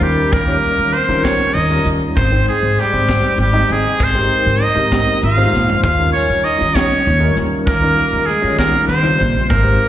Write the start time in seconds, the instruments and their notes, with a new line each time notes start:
Already playing: tine electric piano G3 C#4 D#4 F4 A#4
0.01 upright bass D#2, muted trumpet G4, closed hi-hat
0.05 tenor saxophone G3
0.33 upright bass D#2, muted trumpet A#4, kick, closed hi-hat
0.37 tenor saxophone A#3
0.47 tine electric piano G3 C#4 D#4 F4 C#5
0.64 closed hi-hat
0.79 upright bass D#3
0.93 muted trumpet C5, closed hi-hat
0.98 tenor saxophone C4
1.08 upright bass D#3, tine electric piano G3 C#4 D#4 F4 A#4
1.24 muted trumpet C#5, kick, snare, closed hi-hat
1.28 tenor saxophone C#4
1.54 upright bass D#2, tenor saxophone D#4, muted trumpet D#5, closed hi-hat
1.70 tine electric piano G3 C#4 D#4 F4 A#4
1.86 upright bass D#2, closed hi-hat
2.17 upright bass G#1, tenor saxophone C4, muted trumpet C5, kick, closed hi-hat
2.32 tine electric piano G#3 C4 D#4 C5 G5
2.47 tenor saxophone G#3, muted trumpet G#4, closed hi-hat
2.62 upright bass G#2
2.79 tenor saxophone G3, muted trumpet G4, closed hi-hat
2.93 upright bass G#2, tine electric piano G3 C4 D#4 G4 C5
3.09 kick, snare, closed hi-hat
3.38 upright bass G#1, tenor saxophone G3, muted trumpet G4, closed hi-hat
3.53 tine electric piano G#3 C4 D#4 D#5 G5
3.70 upright bass G#1, tenor saxophone G#3, muted trumpet G#4, closed hi-hat
4.00 upright bass G#1, tenor saxophone C4, muted trumpet C5, kick, closed hi-hat
4.15 tine electric piano G#3 C4 D#4 G4 A#4
4.31 closed hi-hat
4.46 upright bass G#2
4.61 tenor saxophone D#4, muted trumpet D#5, closed hi-hat
4.74 upright bass G#2, tine electric piano G#3 C4 D#4 G4 A#4
4.92 kick, snare, closed hi-hat
5.23 upright bass G#1, tenor saxophone F4, muted trumpet F5, closed hi-hat
5.37 tine electric piano G#3 C4 D#4 G4 C5
5.53 upright bass A#1, snare
5.69 floor tom
5.84 upright bass D#2, tenor saxophone F4, muted trumpet F5, kick, closed hi-hat
5.99 tine electric piano G3 C#4 D#4 F4 A#4
6.13 tenor saxophone C#4, muted trumpet C#5, closed hi-hat
6.30 upright bass D#3
6.45 tenor saxophone D#4, muted trumpet D#5, closed hi-hat
6.58 upright bass D#3, tine electric piano G3 C#4 D#4 F4 C#5
6.75 tenor saxophone C#4, muted trumpet C#5, kick, snare, closed hi-hat
7.06 upright bass D#2, closed hi-hat
7.20 tine electric piano G3 C#4 D#4 F4 A#4
7.37 upright bass D#2, closed hi-hat
7.67 upright bass D#2, tenor saxophone A#3, muted trumpet A#4, kick, closed hi-hat
7.82 tine electric piano G3 C#4 D#4 F4 A#4
7.98 closed hi-hat
8.13 upright bass D#3
8.26 tenor saxophone G#3, muted trumpet G#4, closed hi-hat
8.42 upright bass D#3, tine electric piano G3 C#4 D#4 F4 C#5
8.59 tenor saxophone A#3, muted trumpet A#4, kick, snare, closed hi-hat
8.88 upright bass D#2, tenor saxophone C4, muted trumpet C5, closed hi-hat
9.03 tine electric piano C#3 G3 D#4 F4 C5
9.20 upright bass A#1, closed hi-hat
9.49 upright bass G#1, tenor saxophone A#3, muted trumpet A#4, kick, closed hi-hat
9.63 tine electric piano G#3 C4 D#4 G4 C5
9.81 closed hi-hat